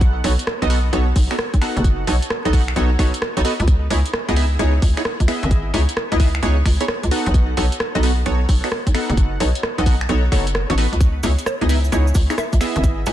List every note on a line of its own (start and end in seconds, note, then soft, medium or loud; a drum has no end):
0.00 0.22 B1 loud
0.00 0.22 B3 loud
0.00 0.22 D#4 medium
0.00 0.22 F#4 medium
0.00 0.22 A4 medium
0.00 0.22 F#5 loud
0.00 kick loud
0.00 closed hi-hat medium
0.24 0.36 B1 loud
0.24 0.33 B3 medium
0.24 0.33 D#4 medium
0.24 0.33 F#4 medium
0.24 0.33 A4 medium
0.24 0.33 C#5 loud
0.24 open hi-hat loud
0.39 closed hi-hat medium
0.47 cross-stick loud
0.62 0.90 B1 medium
0.62 0.69 B3 medium
0.62 0.69 D#4 medium
0.62 0.69 F#4 medium
0.62 0.69 A4 medium
0.62 0.69 D#5 medium
0.62 closed hi-hat soft
0.70 0.79 B3 medium
0.70 0.79 D#4 medium
0.70 0.79 F#4 medium
0.70 0.79 A4 medium
0.70 0.79 F#5 loud
0.70 open hi-hat loud
0.93 1.13 B1 loud
0.93 1.07 B3 medium
0.93 1.07 D#4 medium
0.93 1.07 F#4 medium
0.93 1.07 A4 medium
0.93 1.07 C#5 loud
0.93 closed hi-hat medium
1.16 1.28 B1 medium
1.16 kick loud
1.16 open hi-hat loud
1.31 1.35 B3 medium
1.31 1.35 D#4 medium
1.31 1.35 F#4 medium
1.31 1.35 A4 medium
1.31 1.35 C#5 loud
1.31 finger snap medium
1.31 open hi-hat medium
1.39 cross-stick loud
1.54 1.60 B1 medium
1.54 kick medium
1.54 closed hi-hat medium
1.62 2.06 B3 loud
1.62 2.06 D#4 medium
1.62 2.06 F#4 medium
1.62 2.05 A4 medium
1.62 2.05 F#5 loud
1.62 finger snap medium
1.62 open hi-hat loud
1.76 2.05 F#1 loud
1.76 closed hi-hat soft
1.84 kick loud
1.84 closed hi-hat medium
2.07 2.20 B1 loud
2.07 2.16 B3 medium
2.07 2.16 D#4 medium
2.07 2.16 F#4 medium
2.07 2.16 A4 medium
2.07 2.16 C#5 loud
2.07 open hi-hat loud
2.22 closed hi-hat medium
2.30 cross-stick loud
2.45 2.74 B1 medium
2.45 2.52 B3 medium
2.45 2.52 D#4 medium
2.45 2.52 F#4 medium
2.45 2.52 A4 medium
2.45 2.52 D#5 medium
2.45 closed hi-hat soft
2.53 2.62 B3 medium
2.53 2.62 D#4 medium
2.53 2.62 F#4 medium
2.53 2.62 A4 medium
2.53 2.62 F#5 loud
2.53 kick loud
2.53 open hi-hat loud
2.68 finger snap medium
2.76 2.96 B1 loud
2.76 2.90 B3 medium
2.76 2.90 D#4 medium
2.76 2.90 F#4 medium
2.76 2.90 A4 medium
2.76 2.90 C#5 loud
2.76 closed hi-hat medium
2.99 3.11 B1 medium
2.99 3.13 B3 loud
2.99 3.13 D#4 medium
2.99 3.13 F#4 medium
2.99 3.13 A4 medium
2.99 3.13 C#5 loud
2.99 finger snap soft
2.99 kick medium
2.99 open hi-hat loud
3.14 closed hi-hat medium
3.22 cross-stick loud
3.37 3.43 B1 medium
3.37 3.41 B3 medium
3.37 3.41 D#4 medium
3.37 3.41 F#4 medium
3.37 3.41 A4 medium
3.37 3.41 C#5 loud
3.37 closed hi-hat medium
3.45 3.53 B3 medium
3.45 3.53 D#4 medium
3.45 3.53 F#4 medium
3.45 3.53 A4 medium
3.45 3.53 B4 loud
3.45 open hi-hat loud
3.60 3.88 C#2 loud
3.60 closed hi-hat soft
3.68 kick loud
3.68 closed hi-hat medium
3.90 4.03 C#2 loud
3.90 3.99 B3 medium
3.90 3.99 D#4 medium
3.90 3.99 E4 medium
3.90 3.99 G#4 medium
3.90 3.99 C#5 loud
3.90 open hi-hat loud
4.06 closed hi-hat medium
4.13 cross-stick loud
4.29 4.57 C#2 medium
4.29 4.35 B3 medium
4.29 4.35 D#4 medium
4.29 4.35 E4 medium
4.29 4.35 G#4 medium
4.29 4.35 D#5 medium
4.29 closed hi-hat soft
4.36 4.45 B3 medium
4.36 4.45 D#4 medium
4.36 4.45 E4 medium
4.36 4.45 G#4 medium
4.36 4.45 E5 loud
4.36 open hi-hat loud
4.59 4.79 C#2 loud
4.59 4.73 B3 medium
4.59 4.73 D#4 medium
4.59 4.73 E4 medium
4.59 4.73 G#4 medium
4.59 4.73 C#5 loud
4.59 closed hi-hat medium
4.82 4.94 C#2 medium
4.82 kick loud
4.82 open hi-hat loud
4.97 5.02 B3 medium
4.97 5.02 D#4 medium
4.97 5.02 E4 medium
4.97 5.02 G#4 medium
4.97 5.02 C#5 medium
4.97 finger snap medium
4.97 open hi-hat medium
5.05 cross-stick loud
5.20 5.26 C#2 medium
5.20 kick medium
5.20 closed hi-hat medium
5.28 5.72 B3 loud
5.28 5.72 E4 medium
5.28 5.72 G#4 medium
5.28 5.72 D#5 medium
5.28 5.72 E5 loud
5.28 finger snap medium
5.28 open hi-hat loud
5.43 5.71 G#1 loud
5.43 closed hi-hat soft
5.51 kick loud
5.51 closed hi-hat medium
5.74 5.86 C#2 loud
5.74 5.83 B3 medium
5.74 5.83 D#4 medium
5.74 5.83 E4 medium
5.74 5.83 G#4 medium
5.74 5.83 C#5 loud
5.74 open hi-hat loud
5.89 closed hi-hat medium
5.97 cross-stick loud
6.12 6.40 C#2 medium
6.12 6.18 B3 medium
6.12 6.18 D#4 medium
6.12 6.18 E4 medium
6.12 6.18 G#4 medium
6.12 6.18 D#5 medium
6.12 closed hi-hat soft
6.20 6.28 B3 medium
6.20 6.28 D#4 medium
6.20 6.28 E4 medium
6.20 6.28 G#4 medium
6.20 6.28 E5 loud
6.20 kick loud
6.20 open hi-hat loud
6.35 finger snap medium
6.42 6.62 C#2 loud
6.42 6.56 B3 loud
6.42 6.56 D#4 medium
6.42 6.56 E4 medium
6.42 6.56 G#4 medium
6.42 6.56 C#5 loud
6.42 closed hi-hat medium
6.66 6.78 C#2 medium
6.66 finger snap soft
6.66 kick medium
6.66 open hi-hat loud
6.80 6.85 B3 medium
6.80 6.85 D#4 medium
6.80 6.85 E4 medium
6.80 6.85 G#4 medium
6.80 6.85 C#5 loud
6.80 closed hi-hat medium
6.88 cross-stick loud
7.03 7.10 C#2 medium
7.03 closed hi-hat medium
7.11 7.55 B3 loud
7.11 7.55 D#4 medium
7.11 7.55 F#4 medium
7.11 7.55 A4 medium
7.11 7.55 F#5 loud
7.11 open hi-hat loud
7.26 7.55 B1 loud
7.26 closed hi-hat soft
7.34 kick loud
7.34 closed hi-hat medium
7.57 7.69 B1 loud
7.57 7.66 B3 medium
7.57 7.66 D#4 medium
7.57 7.66 F#4 medium
7.57 7.66 A4 medium
7.57 7.66 C#5 loud
7.57 open hi-hat loud
7.72 closed hi-hat medium
7.80 cross-stick loud
7.95 8.23 B1 medium
7.95 8.02 B3 medium
7.95 8.02 D#4 medium
7.95 8.02 F#4 medium
7.95 8.02 A4 medium
7.95 8.02 D#5 medium
7.95 closed hi-hat soft
8.03 8.12 B3 medium
8.03 8.12 D#4 medium
8.03 8.12 F#4 medium
8.03 8.12 A4 medium
8.03 8.12 F#5 loud
8.03 open hi-hat loud
8.26 8.46 B1 loud
8.26 8.40 B3 medium
8.26 8.40 D#4 medium
8.26 8.40 F#4 medium
8.26 8.40 A4 medium
8.26 8.40 C#5 loud
8.26 closed hi-hat medium
8.49 8.61 B1 medium
8.49 kick loud
8.49 open hi-hat loud
8.64 8.68 B3 medium
8.64 8.68 D#4 medium
8.64 8.68 F#4 medium
8.64 8.68 A4 medium
8.64 8.68 C#5 loud
8.64 finger snap medium
8.64 open hi-hat medium
8.72 cross-stick loud
8.87 8.93 B1 medium
8.87 kick medium
8.87 closed hi-hat medium
8.94 9.38 B3 loud
8.94 9.38 D#4 medium
8.94 9.38 F#4 medium
8.94 9.38 A4 medium
8.94 9.38 F#5 loud
8.94 finger snap medium
8.94 open hi-hat loud
9.10 9.38 F#1 loud
9.10 closed hi-hat soft
9.17 kick loud
9.17 closed hi-hat medium
9.40 9.52 B1 loud
9.40 9.49 B3 medium
9.40 9.49 D#4 medium
9.40 9.49 F#4 medium
9.40 9.49 A4 medium
9.40 9.49 C#5 loud
9.40 open hi-hat loud
9.55 closed hi-hat medium
9.63 cross-stick loud
9.78 10.06 B1 medium
9.78 9.85 B3 medium
9.78 9.85 D#4 medium
9.78 9.85 F#4 medium
9.78 9.85 A4 medium
9.78 9.85 D#5 medium
9.78 closed hi-hat soft
9.86 9.95 B3 medium
9.86 9.95 D#4 medium
9.86 9.95 F#4 medium
9.86 9.95 A4 medium
9.86 9.95 F#5 loud
9.86 kick loud
9.86 open hi-hat loud
10.01 finger snap medium
10.09 10.29 B1 loud
10.09 10.23 B3 loud
10.09 10.23 D#4 medium
10.09 10.23 F#4 medium
10.09 10.23 A4 medium
10.09 10.23 C#5 loud
10.09 closed hi-hat medium
10.32 10.65 F#1 medium
10.32 10.46 B3 loud
10.32 10.46 D#4 medium
10.32 10.46 F#4 medium
10.32 10.46 A4 medium
10.32 10.46 C#5 loud
10.32 finger snap soft
10.32 kick medium
10.32 open hi-hat loud
10.47 closed hi-hat medium
10.55 cross-stick loud
10.70 10.87 A1 loud
10.70 10.74 B3 medium
10.70 10.74 D#4 medium
10.70 10.74 F#4 medium
10.70 10.74 A4 medium
10.70 10.74 C#5 loud
10.70 closed hi-hat medium
10.78 10.86 B3 medium
10.78 10.86 D#4 medium
10.78 10.86 F#4 medium
10.78 10.86 A4 medium
10.78 10.86 B4 loud
10.78 open hi-hat loud
10.93 11.21 C#2 medium
10.93 closed hi-hat soft
11.01 kick loud
11.01 closed hi-hat medium
11.01 cabasa soft
11.23 11.36 C#2 loud
11.23 11.32 B3 medium
11.23 11.32 D#4 medium
11.23 11.32 E4 medium
11.23 11.32 G#4 medium
11.23 11.32 C#5 loud
11.23 open hi-hat loud
11.23 cabasa medium
11.38 closed hi-hat medium
11.38 cabasa soft
11.46 11.92 C#5 medium
11.46 cross-stick loud
11.46 cabasa medium
11.61 11.90 C#2 loud
11.61 11.68 B3 medium
11.61 11.68 D#4 medium
11.61 11.68 E4 medium
11.61 11.68 G#4 medium
11.61 11.68 D#5 medium
11.61 closed hi-hat soft
11.69 11.78 B3 medium
11.69 11.78 D#4 medium
11.69 11.78 E4 medium
11.69 11.78 G#4 medium
11.69 11.78 E5 loud
11.69 open hi-hat loud
11.69 cabasa medium
11.84 cabasa soft
11.92 12.12 C#2 loud
11.92 12.06 B3 loud
11.92 12.06 D#4 medium
11.92 12.06 E4 medium
11.92 12.06 G#4 medium
11.92 12.06 C#5 loud
11.92 closed hi-hat medium
11.92 cabasa medium
12.07 cabasa soft
12.15 12.27 C#2 loud
12.15 kick loud
12.15 open hi-hat loud
12.15 cabasa loud
12.30 12.35 B3 medium
12.30 12.35 D#4 medium
12.30 12.35 E4 medium
12.30 12.35 G#4 medium
12.30 12.35 C#5 loud
12.30 finger snap medium
12.30 open hi-hat medium
12.30 cabasa soft
12.38 12.56 E5 medium
12.38 cross-stick loud
12.38 cabasa soft
12.53 12.59 C#2 medium
12.53 kick medium
12.53 closed hi-hat medium
12.53 cabasa soft
12.61 13.05 B3 loud
12.61 13.05 E4 medium
12.61 13.05 G#4 medium
12.61 13.05 D#5 medium
12.61 13.05 E5 loud
12.61 finger snap medium
12.61 open hi-hat loud
12.61 cabasa medium
12.76 13.04 G#1 loud
12.76 closed hi-hat soft
12.76 cabasa soft
12.84 kick loud
12.84 closed hi-hat medium
12.84 cabasa medium
13.06 13.13 C#2 loud
13.06 13.13 B3 medium
13.06 13.13 D#4 medium
13.06 13.13 E4 medium
13.06 13.13 G#4 medium
13.06 13.13 C#5 loud
13.06 13.13 G#5 medium
13.06 open hi-hat loud
13.06 cabasa medium